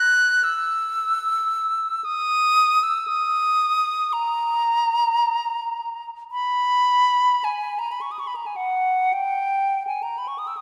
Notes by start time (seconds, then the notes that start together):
Already playing: F#6
0.44 E6
2.05 D#6
2.83 E6
3.08 D#6
4.13 A#5
6.31 B5
7.44 G#5
7.79 A#5
7.92 B5
8.01 C#6
8.12 D#6
8.19 C#6
8.27 B5
8.36 A#5
8.46 G#5
8.56 F#5
9.13 G5
9.87 G#5
10.03 A#5
10.18 B5
10.28 C#6
10.38 D#6
10.47 E6
10.57 D#6